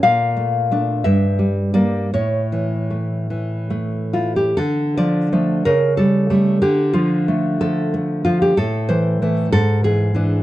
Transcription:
\new Staff \with { instrumentName = "Nylon-string guitar" } { \time 6/8 \key d \minor \tempo 4. = 60 << { f''4. e''4 d''8 | cis''2~ cis''8 f'16 g'16 | a'8 d''4 bes'8 a'4 | g'8 f'4 a'4 f'16 g'16 |
a'8 c''4 a'8 gis'4 | } \\ { bes,8 a8 <a d'>8 g,8 g8 <g bes>8 | a,8 e8 a8 e8 a8 e'8 | d8 f8 <f a>8 cis8 g8 <g a>8 | d8 f8 a8 f8 a8 f8 |
a,8 e8 <e a>8 gis,8 e8 <e d'>8 | } >> }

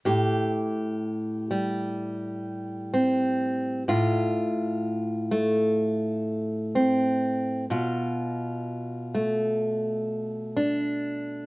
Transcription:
\new Staff \with { instrumentName = "Steel-string acoustic guitar" } { \time 4/4 \key a \minor \tempo 4 = 63 << { g'4. g4. c'4 | f'4. a4. c'4 | f'4. a4. d'4 | } \\ { a,1 | a,1 | b,1 | } >> }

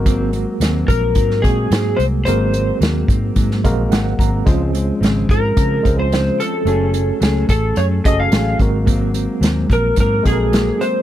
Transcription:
<<
  \new Staff \with { instrumentName = "Electric slide guitar" } { \time 4/4 \key aes \mixolydian \tempo 4 = 109 r4. bes'4 aes'4 c''8 | c''4 r2. | r4. bes'4~ bes'16 c''8. a'8~ | a'4. a'8 des''8 ees''16 f''8. r8 |
r4. bes'8 bes'8 aes'4 c''8 | }
  \new Staff \with { instrumentName = "Tine electric piano" } { \time 4/4 \key aes \mixolydian << { r1 | r2 r8 f''8 ges''8 bes''8 | r1 | r1 |
r1 | } \\ { <aes c' ges' bes'>4. r4 <aes c' ges' aes'>4. | <aes c' ges' bes'>2 r8 <aes c' ges' bes'>4. | <aes des' f' c''>2 r8 <aes des' f' c''>4. | <a des' ges' a'>2 r8 <des' ges' aes' a'>4 <aes c' ges' bes'>8~ |
<aes c' ges' bes'>4. r4 <aes c' ges' a' bes'>4. | } >> }
  \new Staff \with { instrumentName = "Clean electric guitar" } { \time 4/4 \key aes \mixolydian <aes, ges bes c'>8 <ges bes c'>8 <aes, ges bes c'>8 <ges bes c'>8 <aes, ges bes c'>8 <ges bes c'>8 <aes, ges bes c'>8 <ges bes c'>8 | <aes, ges bes c'>8 <ges bes c'>8 <aes, ges bes c'>8 <ges bes c'>8 <aes, ges bes c'>8 <ges bes c'>8 <aes, ges bes c'>8 <ges bes c'>8 | <des f aes c'>8 <f aes c'>8 <des f aes c'>8 <f aes c'>8 <des f aes c'>8 <f aes c'>8 <des f aes c'>8 <f aes c'>8 | <ges a des' aes'>8 <a des' aes'>8 <ges a des' aes'>8 <a des' aes'>8 <ges a des' aes'>8 <a des' aes'>8 <ges a des' aes'>8 <ges bes c'>8 |
<aes, ges bes c'>8 <ges bes c'>8 <aes, ges bes c'>8 <ges bes c'>8 <aes, ges bes c'>8 <ges bes c'>8 <aes, ges bes c'>8 <ges bes c'>8 | }
  \new Staff \with { instrumentName = "Fingered electric bass" } { \clef bass \time 4/4 \key aes \mixolydian aes,,4 ees,8 bes,,8 aes,8 bes,8 aes,8 c,8 | aes,,4 ees,8 aes,8 aes,8 bes,,8 aes,,8 aes,,8 | des,4 aes,,8 aes,8 des8 des,4 r8 | ges,,4 des,8 a,,8 ges,8 ges,,8 a,,8 aes,,8~ |
aes,,4 ees,8 bes,,8 aes,8 bes,,4 r8 | }
  \new DrumStaff \with { instrumentName = "Drums" } \drummode { \time 4/4 <hh bd>8 hh8 <hh sn>8 <hh bd>8 <hh bd>16 sn16 <hh bd>8 <hh sn>8 hh8 | hh8 hh8 <hh sn>8 <hh bd>8 <hh bd>16 sn16 <hh bd>8 <hh sn>8 <hh bd>8 | <hh bd>8 hh8 <hh sn>8 <hh bd>8 <hh bd>8 <hh bd>8 <hh sn>8 hh8 | hh8 hh8 <hh sn>8 <hh bd>8 hh8 <hh bd>8 <hh sn>8 <hh bd>8 |
<hh bd>8 hh8 <hh sn>8 <hh bd>8 <hh bd>8 <hh bd>8 <hh sn>8 hh8 | }
>>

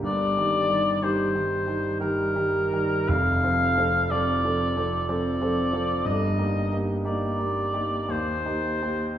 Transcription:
<<
  \new Staff \with { instrumentName = "Oboe" } { \time 3/4 \key ees \lydian \tempo 4 = 60 d''4 c''4 bes'4 | f''4 d''4 d''4 | ees''8 r8 d''4 c''4 | }
  \new Staff \with { instrumentName = "Grand piano" } { \time 3/4 \key ees \lydian \tuplet 3/2 { <g,, g,>8 <ees g g'>8 <ees g g'>8 <ees g g'>8 <ees g g'>8 <ees g g'>8 <ees g g'>8 <ees g g'>8 <ees g g'>8 } | \tuplet 3/2 { <f,, f,>8 <f c' a'>8 <f c' a'>8 <f c' a'>8 <f c' a'>8 <f c' a'>8 <f c' a'>8 <f c' a'>8 <f c' a'>8 } | \tuplet 3/2 { <g,, g,>8 <bes ees' g'>8 <bes ees' g'>8 <bes ees' g'>8 <bes ees' g'>8 <bes ees' g'>8 ees,8 <bes ees' g'>8 <bes ees' g'>8 } | }
>>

